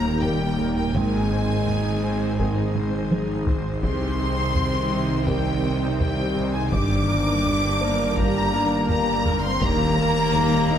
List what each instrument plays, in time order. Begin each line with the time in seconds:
Already playing: detuned saw bass D#1, double bass section D#2, cello section D#2, felt piano G3 G4, viola section A#3 A#4, ambient pad A#3 D#4 A#4 G5, violin section A#5
0.22 french horn section G3, viola section G3 G4, felt piano A#3 A#4, violin section G5, taiko low-mid
0.58 viola section A#3 A#4, taiko low-mid
0.76 french horn section G3, violin section G5
0.93 detuned saw bass G#1, double bass section G#1, cello section G#2, trombone section D#3 C4, ambient pad D#3 G#4 C5, french horn section G#3, viola section D#4 G#4, violin section G#5, taiko
1.31 viola section C4 C5
1.67 viola section D#4 G#4, taiko low-mid
2.04 viola section C4 C5
2.39 trombone section D#3 C4, viola section D#4 G#4, felt piano G#4, taiko
2.75 viola section C4 C5, taiko mid
3.11 viola section D#4 G#4, taiko high
3.47 viola section C4 C5, taiko low
3.83 double bass section C2, detuned saw bass C2, cello section C3, trombone section D#3 C4, ambient pad D#3 D#4 G5, viola section C4 G4, french horn section C4, violin section C6, taiko
4.20 viola section D#4 C5
4.56 viola section C4 G4, taiko low-mid
4.93 viola section D#4 C5
5.27 french horn section G3, viola section C4 G4, felt piano A#4, violin section G5, taiko
5.64 viola section D#4 C5
6.00 french horn section G3, viola section C4 G4, violin section G5, taiko low-mid
6.36 viola section D#4 C5, taiko low-mid
6.53 french horn section G#3, violin section G#5
6.71 double bass section G1, detuned saw bass G1, cello section G2, viola section G3 G4, trombone section A#3 D4, ambient pad D4 A#4, french horn section D4, violin section D6, taiko
7.08 viola section A#3 A#4
7.44 viola section G3 G4, taiko low-mid
7.81 viola section A#3 A#4, felt piano C5
8.17 viola section G3 G4, french horn section A#3, violin section A#5, taiko
8.54 viola section A#3 A#4, felt piano D4 D5
8.89 viola section G3 G4, french horn section A#3, violin section A#5, taiko low-mid
9.26 viola section A#3 A#4, taiko low-mid
9.43 french horn section C4, violin section C6
9.61 detuned saw bass D#1, double bass section D#2, cello section D#2, trombone section D#3 G3, ambient pad D#3 A#3 G4, viola section G3 G4, french horn section A#3, violin section A#5, taiko
9.98 viola section A#3 A#4
10.34 viola section G3 G4, taiko low-mid
10.69 viola section A#3 A#4, felt piano D#4 D#5